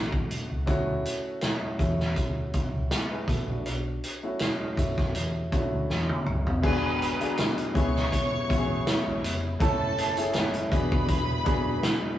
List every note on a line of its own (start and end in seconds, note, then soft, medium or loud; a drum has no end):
0.00 0.24 A1 medium
0.00 0.66 A3 medium
0.00 0.70 B3 medium
0.00 0.69 D4 medium
0.00 0.68 F#4 medium
0.12 kick medium
0.31 closed hi-hat medium
0.51 0.65 C#2 medium
0.66 0.98 D2 medium
0.66 1.57 A3 medium
0.66 1.57 C#4 medium
0.66 1.57 E4 medium
0.66 1.58 F#4 loud
0.66 kick medium
0.66 closed hi-hat medium
1.05 closed hi-hat medium
1.41 snare medium
1.41 closed hi-hat medium
1.78 2.17 E2 medium
1.78 2.98 A3 medium
1.78 2.91 C#4 medium
1.78 2.91 E4 medium
1.78 2.92 F#4 medium
1.78 kick medium
1.78 closed hi-hat medium
2.00 snare soft
2.16 2.47 D2 medium
2.16 kick medium
2.16 closed hi-hat medium
2.54 kick medium
2.54 closed hi-hat medium
2.75 2.88 C#2 medium
2.91 snare medium
2.91 closed hi-hat medium
3.11 3.28 G#4 soft
3.11 3.27 B4 medium
3.28 3.66 A#1 medium
3.28 3.48 F#4 soft
3.28 3.47 A4 medium
3.28 kick medium
3.28 closed hi-hat medium
3.50 3.84 D4 medium
3.50 3.84 F#4 medium
3.66 3.97 B1 medium
3.66 closed hi-hat medium
4.04 closed hi-hat medium
4.23 4.67 A3 medium
4.23 4.67 C#4 medium
4.23 4.67 E4 medium
4.23 4.68 F#4 medium
4.39 snare medium
4.39 closed hi-hat medium
4.77 5.16 F#2 medium
4.77 5.37 A3 medium
4.77 5.38 C#4 medium
4.77 5.38 E4 medium
4.77 5.38 F#4 medium
4.77 kick medium
4.77 closed hi-hat medium
4.98 kick medium
4.98 snare soft
5.15 5.46 E2 medium
5.15 closed hi-hat medium
5.52 6.41 A3 medium
5.52 6.42 C#4 medium
5.52 5.59 D4 medium
5.52 6.43 F#4 medium
5.52 kick medium
5.52 closed hi-hat medium
5.59 6.45 E4 medium
5.73 5.86 D2 medium
5.90 6.06 E2 medium
5.90 snare soft
6.09 high tom medium
6.26 6.47 C#2 medium
6.26 mid tom medium
6.47 6.61 B1 medium
6.47 floor tom medium
6.62 7.11 G#1 loud
6.62 7.74 D3 medium
6.62 9.58 G#3 medium
6.62 7.08 B3 loud
6.62 9.58 B3 medium
6.62 7.08 D4 medium
6.62 7.08 F#4 medium
6.62 7.74 F#4 medium
6.62 7.09 G#4 loud
6.62 7.36 B4 medium
6.62 7.36 B5 loud
6.62 kick loud
6.62 crash medium
7.02 closed hi-hat medium
7.20 7.73 B3 medium
7.20 7.75 D4 medium
7.20 7.75 F#4 medium
7.20 7.75 G#4 medium
7.20 muted fingered electric bass stroke soft
7.20 closed hi-hat soft
7.38 snare loud
7.38 closed hi-hat medium
7.58 closed hi-hat soft
7.74 8.06 C#2 medium
7.74 10.69 C#3 medium
7.74 8.35 B3 medium
7.74 8.35 C#4 medium
7.74 12.19 E4 medium
7.74 8.36 E4 medium
7.74 8.36 G#4 medium
7.74 9.20 C#5 medium
7.74 9.21 C#6 loud
7.74 kick medium
7.74 closed hi-hat medium
7.96 snare soft
8.12 kick medium
8.12 closed hi-hat medium
8.33 muted fingered electric bass stroke soft
8.49 8.80 A1 medium
8.49 9.38 B3 medium
8.49 9.39 C#4 medium
8.49 9.39 E4 medium
8.49 8.57 F#4 medium
8.49 kick medium
8.49 closed hi-hat medium
8.57 9.43 G#4 medium
8.87 snare loud
8.87 closed hi-hat loud
9.07 9.21 G#1 medium
9.24 9.54 F1 medium
9.24 closed hi-hat medium
9.60 10.68 F#1 loud
9.60 12.19 F#3 medium
9.60 10.05 A3 loud
9.60 10.70 A3 medium
9.60 10.05 C#4 medium
9.60 10.05 E4 medium
9.60 10.33 A4 loud
9.60 10.06 A4 loud
9.60 10.33 A5 loud
9.60 kick loud
9.60 closed hi-hat medium
9.98 closed hi-hat medium
10.16 10.71 A3 medium
10.16 10.71 C#4 medium
10.16 10.72 E4 medium
10.16 10.71 G#4 medium
10.16 closed hi-hat soft
10.33 snare loud
10.33 closed hi-hat medium
10.54 closed hi-hat soft
10.71 11.33 E1 loud
10.71 12.19 D3 medium
10.71 12.19 G#3 medium
10.71 11.32 B3 medium
10.71 11.32 D4 medium
10.71 11.32 F#4 medium
10.71 11.33 G#4 medium
10.71 12.17 B4 loud
10.71 12.17 B5 loud
10.71 kick medium
10.71 closed hi-hat medium
10.92 kick loud
11.08 kick medium
11.08 closed hi-hat medium
11.44 11.77 F#1 medium
11.44 12.19 B3 medium
11.44 12.19 D4 medium
11.44 12.19 F#4 medium
11.44 12.19 G#4 medium
11.44 kick loud
11.44 closed hi-hat medium
11.83 snare loud
11.83 closed hi-hat loud